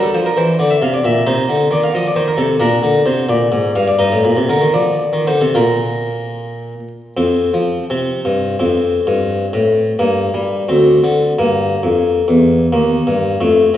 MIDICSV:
0, 0, Header, 1, 2, 480
1, 0, Start_track
1, 0, Key_signature, -2, "major"
1, 0, Tempo, 454201
1, 1344, Time_signature, 6, 3, 24, 8
1, 4225, Tempo, 505476
1, 5185, Tempo, 542495
1, 7104, Key_signature, -1, "major"
1, 7105, Tempo, 481928
1, 7585, Tempo, 466563
1, 10945, Tempo, 451128
1, 13973, End_track
2, 0, Start_track
2, 0, Title_t, "Harpsichord"
2, 0, Program_c, 0, 6
2, 0, Note_on_c, 0, 62, 39
2, 29, Note_on_c, 0, 69, 61
2, 147, Note_off_c, 0, 69, 0
2, 150, Note_on_c, 0, 53, 49
2, 154, Note_on_c, 0, 72, 57
2, 269, Note_off_c, 0, 72, 0
2, 276, Note_on_c, 0, 70, 57
2, 321, Note_off_c, 0, 53, 0
2, 389, Note_on_c, 0, 52, 57
2, 390, Note_off_c, 0, 70, 0
2, 396, Note_on_c, 0, 72, 76
2, 560, Note_off_c, 0, 52, 0
2, 594, Note_off_c, 0, 72, 0
2, 625, Note_on_c, 0, 50, 59
2, 631, Note_on_c, 0, 74, 85
2, 746, Note_on_c, 0, 76, 64
2, 747, Note_off_c, 0, 74, 0
2, 797, Note_off_c, 0, 50, 0
2, 864, Note_on_c, 0, 48, 55
2, 865, Note_off_c, 0, 76, 0
2, 873, Note_on_c, 0, 77, 76
2, 989, Note_off_c, 0, 77, 0
2, 992, Note_on_c, 0, 74, 67
2, 1038, Note_off_c, 0, 48, 0
2, 1104, Note_on_c, 0, 46, 64
2, 1109, Note_off_c, 0, 74, 0
2, 1114, Note_on_c, 0, 76, 84
2, 1277, Note_off_c, 0, 46, 0
2, 1301, Note_off_c, 0, 62, 0
2, 1336, Note_on_c, 0, 63, 41
2, 1339, Note_on_c, 0, 48, 61
2, 1349, Note_off_c, 0, 76, 0
2, 1349, Note_on_c, 0, 72, 91
2, 1512, Note_off_c, 0, 48, 0
2, 1573, Note_on_c, 0, 50, 53
2, 1747, Note_off_c, 0, 50, 0
2, 1750, Note_off_c, 0, 72, 0
2, 1805, Note_on_c, 0, 51, 56
2, 1818, Note_on_c, 0, 74, 91
2, 1937, Note_off_c, 0, 74, 0
2, 1940, Note_on_c, 0, 77, 67
2, 1981, Note_off_c, 0, 51, 0
2, 2009, Note_off_c, 0, 63, 0
2, 2054, Note_on_c, 0, 53, 55
2, 2057, Note_off_c, 0, 77, 0
2, 2060, Note_on_c, 0, 75, 89
2, 2176, Note_off_c, 0, 75, 0
2, 2189, Note_on_c, 0, 74, 57
2, 2225, Note_off_c, 0, 53, 0
2, 2279, Note_on_c, 0, 51, 66
2, 2288, Note_on_c, 0, 72, 73
2, 2299, Note_off_c, 0, 74, 0
2, 2407, Note_off_c, 0, 72, 0
2, 2409, Note_on_c, 0, 70, 64
2, 2452, Note_off_c, 0, 51, 0
2, 2508, Note_on_c, 0, 48, 64
2, 2518, Note_on_c, 0, 69, 85
2, 2526, Note_off_c, 0, 70, 0
2, 2684, Note_off_c, 0, 48, 0
2, 2744, Note_on_c, 0, 62, 43
2, 2746, Note_on_c, 0, 46, 66
2, 2754, Note_on_c, 0, 70, 94
2, 2757, Note_off_c, 0, 69, 0
2, 2923, Note_off_c, 0, 46, 0
2, 2988, Note_on_c, 0, 50, 49
2, 3165, Note_off_c, 0, 70, 0
2, 3166, Note_off_c, 0, 50, 0
2, 3229, Note_on_c, 0, 48, 57
2, 3238, Note_on_c, 0, 72, 75
2, 3408, Note_off_c, 0, 48, 0
2, 3433, Note_off_c, 0, 62, 0
2, 3445, Note_off_c, 0, 72, 0
2, 3473, Note_on_c, 0, 46, 52
2, 3482, Note_on_c, 0, 74, 84
2, 3651, Note_off_c, 0, 46, 0
2, 3718, Note_on_c, 0, 44, 60
2, 3897, Note_off_c, 0, 44, 0
2, 3969, Note_on_c, 0, 43, 59
2, 3970, Note_off_c, 0, 74, 0
2, 3973, Note_on_c, 0, 77, 81
2, 4096, Note_on_c, 0, 74, 68
2, 4098, Note_off_c, 0, 77, 0
2, 4152, Note_off_c, 0, 43, 0
2, 4212, Note_on_c, 0, 63, 38
2, 4215, Note_on_c, 0, 43, 56
2, 4222, Note_on_c, 0, 75, 86
2, 4224, Note_off_c, 0, 74, 0
2, 4330, Note_off_c, 0, 43, 0
2, 4344, Note_on_c, 0, 45, 49
2, 4452, Note_off_c, 0, 45, 0
2, 4462, Note_on_c, 0, 46, 51
2, 4570, Note_off_c, 0, 46, 0
2, 4575, Note_on_c, 0, 48, 51
2, 4619, Note_off_c, 0, 75, 0
2, 4686, Note_off_c, 0, 48, 0
2, 4690, Note_on_c, 0, 50, 55
2, 4700, Note_on_c, 0, 70, 70
2, 4805, Note_off_c, 0, 50, 0
2, 4808, Note_on_c, 0, 51, 52
2, 4889, Note_off_c, 0, 63, 0
2, 4902, Note_off_c, 0, 70, 0
2, 4925, Note_on_c, 0, 53, 47
2, 4926, Note_off_c, 0, 51, 0
2, 4929, Note_on_c, 0, 74, 79
2, 5200, Note_off_c, 0, 53, 0
2, 5291, Note_on_c, 0, 51, 47
2, 5411, Note_off_c, 0, 51, 0
2, 5415, Note_on_c, 0, 50, 53
2, 5421, Note_on_c, 0, 72, 62
2, 5422, Note_off_c, 0, 74, 0
2, 5535, Note_off_c, 0, 50, 0
2, 5538, Note_on_c, 0, 48, 48
2, 5544, Note_off_c, 0, 72, 0
2, 5544, Note_on_c, 0, 69, 57
2, 5659, Note_off_c, 0, 48, 0
2, 5660, Note_on_c, 0, 65, 30
2, 5664, Note_on_c, 0, 46, 51
2, 5668, Note_off_c, 0, 69, 0
2, 5669, Note_on_c, 0, 70, 67
2, 6694, Note_off_c, 0, 70, 0
2, 6699, Note_off_c, 0, 46, 0
2, 7064, Note_off_c, 0, 65, 0
2, 7094, Note_on_c, 0, 41, 63
2, 7095, Note_on_c, 0, 60, 47
2, 7386, Note_off_c, 0, 41, 0
2, 7462, Note_on_c, 0, 53, 55
2, 7753, Note_off_c, 0, 53, 0
2, 7782, Note_off_c, 0, 60, 0
2, 7833, Note_on_c, 0, 48, 55
2, 7836, Note_on_c, 0, 60, 42
2, 8121, Note_off_c, 0, 48, 0
2, 8193, Note_on_c, 0, 43, 53
2, 8485, Note_off_c, 0, 43, 0
2, 8519, Note_off_c, 0, 60, 0
2, 8545, Note_on_c, 0, 60, 41
2, 8549, Note_on_c, 0, 41, 62
2, 8937, Note_off_c, 0, 41, 0
2, 9036, Note_on_c, 0, 43, 64
2, 9415, Note_off_c, 0, 43, 0
2, 9512, Note_on_c, 0, 45, 72
2, 9891, Note_off_c, 0, 45, 0
2, 9938, Note_off_c, 0, 60, 0
2, 9982, Note_on_c, 0, 58, 46
2, 9984, Note_on_c, 0, 43, 72
2, 10273, Note_off_c, 0, 43, 0
2, 10342, Note_on_c, 0, 55, 60
2, 10631, Note_off_c, 0, 55, 0
2, 10662, Note_off_c, 0, 58, 0
2, 10697, Note_on_c, 0, 38, 66
2, 10700, Note_on_c, 0, 60, 52
2, 10986, Note_off_c, 0, 38, 0
2, 11063, Note_on_c, 0, 50, 66
2, 11354, Note_off_c, 0, 50, 0
2, 11383, Note_off_c, 0, 60, 0
2, 11433, Note_on_c, 0, 58, 56
2, 11434, Note_on_c, 0, 43, 74
2, 11815, Note_off_c, 0, 43, 0
2, 11909, Note_on_c, 0, 41, 70
2, 12293, Note_off_c, 0, 41, 0
2, 12386, Note_on_c, 0, 40, 82
2, 12773, Note_off_c, 0, 40, 0
2, 12831, Note_off_c, 0, 58, 0
2, 12859, Note_on_c, 0, 39, 84
2, 12859, Note_on_c, 0, 58, 49
2, 13150, Note_off_c, 0, 39, 0
2, 13227, Note_on_c, 0, 43, 70
2, 13513, Note_off_c, 0, 43, 0
2, 13536, Note_off_c, 0, 58, 0
2, 13582, Note_on_c, 0, 41, 72
2, 13583, Note_on_c, 0, 57, 51
2, 13870, Note_off_c, 0, 41, 0
2, 13973, Note_off_c, 0, 57, 0
2, 13973, End_track
0, 0, End_of_file